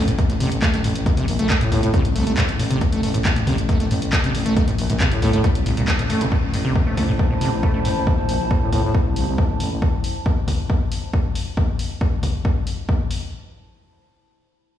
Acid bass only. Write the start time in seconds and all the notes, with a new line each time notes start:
0.08 A2
0.30 A2
0.40 C3
0.62 A3
0.73 A3
0.84 A2
1.06 A2
1.17 C3
1.39 A3
1.61 A2
1.83 A2
1.94 C3
2.15 A3
2.27 A3
2.37 A2
2.59 A2
2.70 C3
2.92 A3
3.03 A3
3.14 A2
3.36 A2
3.47 C3
3.69 A3
3.80 A3
3.91 A2
4.13 A2
4.24 C3
4.46 A3
4.56 A3
4.68 A2
4.89 A2
5.00 C3
5.22 A3
5.33 A3
5.44 A2
5.66 A2
5.77 A#2
5.99 A2
6.10 A3
6.21 A2
6.32 A2
6.54 A2
6.65 C3
6.87 A3
6.97 A3
7.08 A2
7.30 A2
7.41 C3
7.63 A3
7.74 A3
7.85 A2